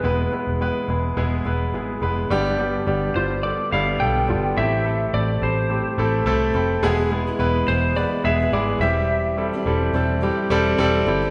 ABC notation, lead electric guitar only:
X:1
M:4/4
L:1/8
Q:"Swing 16ths" 1/4=106
K:Gmix
V:1 name="Lead electric guitar"
B4- B z3 | z3 c d f g2 | e2 d c4 z | z3 c d e d e- |
e6- e z |]